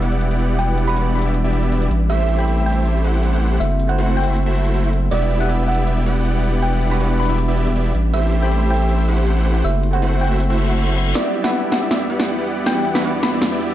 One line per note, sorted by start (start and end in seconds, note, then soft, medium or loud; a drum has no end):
0.00 1.89 E1 medium
0.00 1.88 E3 medium
0.00 0.58 G3 medium
0.00 3.57 G3 medium
0.00 1.88 B3 medium
0.00 0.29 B3 medium
0.00 0.58 D4 medium
0.00 1.88 D4 medium
0.00 0.59 E4 medium
0.00 0.29 E4 medium
0.00 0.59 F#4 medium
0.00 0.29 G4 medium
0.00 0.60 B4 loud
0.00 0.29 D5 medium
0.00 0.57 F#5 medium
0.00 0.29 F#5 medium
0.00 closed hi-hat medium
0.00 impact medium
0.12 closed hi-hat medium
0.21 closed hi-hat medium
0.31 0.95 B3 medium
0.31 0.95 E4 medium
0.31 0.94 G4 medium
0.31 0.94 D5 medium
0.31 0.95 F#5 medium
0.31 closed hi-hat medium
0.40 closed hi-hat medium
0.58 0.84 G3 medium
0.58 0.85 D4 medium
0.58 0.85 E4 medium
0.58 0.85 F#4 medium
0.58 0.86 B4 medium
0.58 0.81 G5 medium
0.58 closed hi-hat medium
0.78 closed hi-hat medium
0.85 1.89 G3 medium
0.85 1.89 D4 medium
0.85 1.90 E4 medium
0.85 1.90 F#4 medium
0.85 1.91 B4 loud
0.85 1.10 B5 medium
0.85 closed hi-hat medium
0.96 1.23 B3 medium
0.96 1.23 E4 medium
0.96 1.23 G4 medium
0.96 1.23 D5 medium
0.96 1.23 F#5 medium
0.96 closed hi-hat medium
1.15 1.31 B5 medium
1.15 closed hi-hat soft
1.19 closed hi-hat medium
1.22 1.34 B3 medium
1.22 1.34 E4 medium
1.22 1.34 G4 medium
1.22 1.34 D5 medium
1.22 1.34 E5 medium
1.22 closed hi-hat medium
1.34 closed hi-hat medium
1.44 1.70 B3 medium
1.44 1.70 E4 medium
1.44 1.70 G4 medium
1.44 1.70 D5 medium
1.44 1.70 E5 loud
1.53 closed hi-hat medium
1.63 closed hi-hat medium
1.72 1.87 B3 medium
1.72 1.87 E4 medium
1.72 1.87 G4 medium
1.72 1.87 D5 medium
1.72 1.87 E5 medium
1.72 closed hi-hat medium
1.82 closed hi-hat medium
1.91 3.59 A1 medium
1.91 3.59 A3 medium
1.91 5.08 C4 medium
1.91 closed hi-hat medium
2.09 2.35 A3 medium
2.09 3.02 A3 medium
2.09 2.36 C4 medium
2.09 2.36 E4 medium
2.09 3.02 E4 medium
2.09 3.02 G4 medium
2.09 2.36 G4 medium
2.09 2.37 B4 medium
2.09 3.02 C5 medium
2.09 2.32 E5 loud
2.09 3.02 E5 loud
2.09 closed hi-hat medium
2.29 closed hi-hat medium
2.36 3.57 A3 medium
2.36 3.58 C4 medium
2.36 3.58 E4 medium
2.36 3.59 G4 medium
2.36 2.61 G5 medium
2.36 3.59 B5 loud
2.36 closed hi-hat medium
2.48 closed hi-hat medium
2.66 2.81 G5 medium
2.66 closed hi-hat soft
2.70 closed hi-hat medium
2.73 closed hi-hat medium
2.85 closed hi-hat medium
3.04 3.30 A3 medium
3.04 3.30 E4 medium
3.04 3.30 G4 medium
3.04 3.30 C5 medium
3.04 3.30 F#5 medium
3.04 closed hi-hat medium
3.14 closed hi-hat medium
3.23 closed hi-hat medium
3.33 3.60 A3 medium
3.33 3.60 E4 medium
3.33 3.60 G4 medium
3.33 3.60 C5 medium
3.33 3.60 F#5 medium
3.33 closed hi-hat medium
3.42 closed hi-hat medium
3.59 5.10 F#1 medium
3.59 5.10 F#3 medium
3.59 3.86 A3 medium
3.59 3.87 C4 medium
3.59 3.87 E4 medium
3.59 5.10 E4 medium
3.59 3.87 F#4 medium
3.59 5.10 A4 medium
3.59 3.87 C5 medium
3.59 3.83 E5 medium
3.59 closed hi-hat medium
3.79 closed hi-hat medium
3.87 5.08 A3 medium
3.87 5.09 C4 medium
3.87 5.09 E4 medium
3.87 5.10 F#4 medium
3.87 5.10 C5 loud
3.87 4.12 F#5 medium
3.87 closed hi-hat medium
3.98 4.25 A3 medium
3.98 4.25 E4 medium
3.98 4.25 F#4 medium
3.98 4.25 C5 medium
3.98 4.25 F#5 medium
3.98 closed hi-hat medium
4.17 4.32 G5 medium
4.17 closed hi-hat soft
4.21 closed hi-hat medium
4.24 4.36 A3 medium
4.24 4.36 E4 medium
4.24 4.36 F#4 medium
4.24 4.36 C5 medium
4.24 4.36 E5 medium
4.24 closed hi-hat medium
4.36 closed hi-hat medium
4.46 4.72 A3 medium
4.46 4.72 E4 medium
4.46 4.72 F#4 medium
4.46 4.72 C5 medium
4.46 4.72 E5 loud
4.55 closed hi-hat medium
4.65 closed hi-hat medium
4.74 4.89 A3 medium
4.74 4.89 E4 medium
4.74 4.89 F#4 medium
4.74 4.89 C5 medium
4.74 4.89 E5 medium
4.74 closed hi-hat medium
4.84 closed hi-hat medium
4.93 closed hi-hat medium
5.10 7.93 E1 medium
5.10 7.92 E3 medium
5.10 5.37 G3 medium
5.10 7.92 G3 medium
5.10 7.92 B3 medium
5.10 6.04 B3 medium
5.10 5.38 D4 medium
5.10 7.92 D4 medium
5.10 5.38 E4 medium
5.10 6.04 E4 medium
5.10 5.38 F#4 medium
5.10 6.04 G4 medium
5.10 5.38 B4 medium
5.10 5.34 D5 loud
5.10 6.04 D5 medium
5.10 6.04 E5 loud
5.10 closed hi-hat medium
5.31 closed hi-hat medium
5.38 6.59 G3 medium
5.38 6.60 D4 medium
5.38 6.60 E4 medium
5.38 6.61 B4 loud
5.38 5.63 F#5 medium
5.38 6.61 F#5 medium
5.38 closed hi-hat medium
5.49 closed hi-hat medium
5.68 5.83 F#5 medium
5.68 closed hi-hat soft
5.72 closed hi-hat medium
5.75 closed hi-hat medium
5.87 closed hi-hat medium
6.06 6.32 B3 medium
6.06 6.32 E4 medium
6.06 6.32 G4 medium
6.06 6.32 D5 medium
6.06 6.32 F#5 medium
6.06 closed hi-hat medium
6.16 closed hi-hat medium
6.25 closed hi-hat medium
6.35 6.98 B3 medium
6.35 6.98 E4 medium
6.35 6.98 G4 medium
6.35 6.98 D5 medium
6.35 6.98 F#5 medium
6.35 closed hi-hat medium
6.44 closed hi-hat medium
6.61 6.88 G3 medium
6.61 6.89 D4 medium
6.61 6.89 E4 medium
6.61 6.89 F#4 medium
6.61 6.89 B4 medium
6.61 6.85 G5 medium
6.61 closed hi-hat medium
6.82 closed hi-hat medium
6.89 7.93 G3 medium
6.89 7.93 D4 medium
6.89 7.94 E4 medium
6.89 7.94 F#4 medium
6.89 7.14 B5 medium
6.89 closed hi-hat medium
6.93 7.95 B4 loud
7.00 7.27 B3 medium
7.00 7.27 E4 medium
7.00 7.27 G4 medium
7.00 7.27 D5 medium
7.00 7.27 F#5 loud
7.00 closed hi-hat medium
7.19 7.35 B5 medium
7.19 closed hi-hat soft
7.23 closed hi-hat medium
7.26 7.38 B3 medium
7.26 7.38 E4 medium
7.26 7.38 G4 medium
7.26 7.38 D5 medium
7.26 7.38 E5 medium
7.26 closed hi-hat medium
7.38 closed hi-hat medium
7.48 7.74 B3 loud
7.48 7.74 E4 medium
7.48 7.74 G4 medium
7.48 7.74 D5 medium
7.48 7.74 E5 loud
7.57 closed hi-hat medium
7.67 closed hi-hat medium
7.76 7.91 B3 medium
7.76 7.91 E4 medium
7.76 7.91 G4 medium
7.76 7.91 D5 medium
7.76 7.91 E5 medium
7.76 closed hi-hat medium
7.86 closed hi-hat medium
7.94 9.63 A1 medium
7.94 9.63 A3 medium
7.94 11.12 C4 medium
7.94 9.63 G4 medium
7.94 closed hi-hat medium
8.13 8.39 A3 medium
8.13 9.06 A3 medium
8.13 8.40 C4 medium
8.13 8.40 E4 medium
8.13 9.06 E4 medium
8.13 9.06 G4 medium
8.13 8.40 G4 medium
8.13 8.40 B4 medium
8.13 9.06 C5 medium
8.13 8.36 E5 loud
8.13 9.06 E5 loud
8.13 closed hi-hat medium
8.33 closed hi-hat medium
8.40 9.61 A3 medium
8.40 9.62 C4 medium
8.40 9.62 E4 medium
8.40 9.63 G4 medium
8.40 8.65 G5 medium
8.40 closed hi-hat medium
8.44 9.63 B5 loud
8.51 closed hi-hat medium
8.70 8.85 G5 medium
8.70 closed hi-hat soft
8.73 closed hi-hat medium
8.76 closed hi-hat medium
8.89 closed hi-hat medium
9.08 9.34 A3 medium
9.08 9.34 E4 medium
9.08 9.34 G4 medium
9.08 9.34 C5 medium
9.08 9.34 F#5 medium
9.08 closed hi-hat medium
9.18 closed hi-hat medium
9.27 closed hi-hat medium
9.36 9.63 A3 medium
9.36 9.63 E4 medium
9.36 9.63 G4 medium
9.36 9.63 C5 medium
9.36 9.63 F#5 medium
9.36 closed hi-hat medium
9.46 closed hi-hat medium
9.64 11.14 F#1 medium
9.64 11.14 F#3 medium
9.64 9.90 A3 medium
9.64 9.91 C4 medium
9.64 11.14 E4 medium
9.64 9.91 E4 medium
9.64 9.91 F#4 medium
9.64 11.14 A4 medium
9.64 9.91 C5 medium
9.64 9.87 E5 loud
9.64 closed hi-hat medium
9.83 closed hi-hat medium
9.91 10.66 A3 medium
9.91 10.66 C4 medium
9.91 10.67 E4 medium
9.91 10.67 F#4 medium
9.91 10.68 C5 loud
9.91 10.16 F#5 medium
9.91 closed hi-hat medium
10.02 10.29 A3 medium
10.02 10.29 E4 medium
10.02 10.29 F#4 medium
10.02 10.29 C5 medium
10.02 10.29 F#5 loud
10.02 closed hi-hat medium
10.21 10.36 G5 medium
10.21 closed hi-hat medium
10.24 closed hi-hat medium
10.27 10.40 A3 medium
10.27 10.40 E4 medium
10.27 10.40 F#4 medium
10.27 10.40 C5 medium
10.27 10.40 E5 loud
10.27 closed hi-hat medium
10.40 closed hi-hat medium
10.40 reverse cymbal medium
10.50 10.76 A3 medium
10.50 10.76 E4 medium
10.50 10.76 F#4 medium
10.50 10.76 C5 medium
10.50 10.76 E5 loud
10.59 closed hi-hat medium
10.68 10.94 A3 medium
10.68 10.94 C4 medium
10.68 10.94 E4 medium
10.68 10.95 F#4 medium
10.68 10.95 F#5 medium
10.68 closed hi-hat medium
10.78 10.93 A3 medium
10.78 10.93 E4 medium
10.78 10.93 F#4 medium
10.78 10.93 C5 medium
10.78 10.93 E5 medium
10.78 closed hi-hat medium
10.87 closed hi-hat medium
10.95 11.13 A3 medium
10.95 11.13 C4 medium
10.95 11.13 E4 medium
10.95 11.13 F#4 medium
10.95 11.14 E5 medium
10.95 closed hi-hat medium
11.14 13.74 E2 medium
11.14 13.74 E3 medium
11.14 11.41 G3 medium
11.14 13.74 G3 medium
11.14 12.08 B3 medium
11.14 11.42 D4 medium
11.14 13.74 D4 medium
11.14 11.42 E4 medium
11.14 12.08 E4 medium
11.14 11.42 F#4 medium
11.14 12.08 G4 medium
11.14 11.42 B4 medium
11.14 11.38 D5 loud
11.14 12.08 D5 medium
11.14 12.08 E5 loud
11.14 snare soft
11.14 closed hi-hat medium
11.14 riser medium
11.34 closed hi-hat medium
11.42 12.63 G3 medium
11.42 12.64 D4 medium
11.42 12.64 E4 medium
11.42 11.66 F#5 medium
11.42 12.65 F#5 medium
11.42 snare soft
11.42 closed hi-hat medium
11.46 12.65 B4 loud
11.53 closed hi-hat medium
11.72 11.87 F#5 medium
11.72 snare soft
11.72 closed hi-hat soft
11.75 closed hi-hat medium
11.78 closed hi-hat medium
11.91 snare soft
11.91 closed hi-hat medium
12.10 12.36 B3 medium
12.10 12.36 E4 medium
12.10 12.36 G4 medium
12.10 12.36 D5 medium
12.10 12.36 F#5 medium
12.10 closed hi-hat medium
12.20 snare soft
12.20 closed hi-hat medium
12.29 closed hi-hat medium
12.38 13.02 B3 medium
12.38 13.02 E4 medium
12.38 13.02 G4 medium
12.38 13.02 D5 medium
12.38 13.02 F#5 medium
12.38 closed hi-hat medium
12.47 closed hi-hat medium
12.65 12.92 G3 medium
12.65 12.92 D4 medium
12.65 12.93 E4 medium
12.65 12.93 F#4 medium
12.65 12.93 B4 medium
12.65 12.89 G5 medium
12.65 snare medium
12.65 closed hi-hat medium
12.85 closed hi-hat medium
12.93 13.74 G3 medium
12.93 13.74 D4 medium
12.93 13.74 E4 medium
12.93 13.74 F#4 medium
12.93 13.17 B5 medium
12.93 snare soft
12.93 closed hi-hat medium
12.97 13.74 B4 loud
13.04 13.31 B3 medium
13.04 13.31 E4 medium
13.04 13.30 G4 medium
13.04 13.31 D5 medium
13.04 13.31 F#5 loud
13.04 closed hi-hat medium
13.23 13.38 B5 medium
13.23 snare medium
13.23 closed hi-hat medium
13.26 closed hi-hat medium
13.29 13.42 B3 medium
13.29 13.42 E4 medium
13.29 13.42 G4 medium
13.29 13.42 D5 medium
13.29 13.42 E5 medium
13.29 closed hi-hat medium
13.42 snare medium
13.42 closed hi-hat medium
13.52 13.74 B3 loud
13.52 13.74 E4 medium
13.52 13.74 G4 medium
13.52 13.74 D5 medium
13.52 13.74 E5 loud
13.60 closed hi-hat medium
13.70 closed hi-hat medium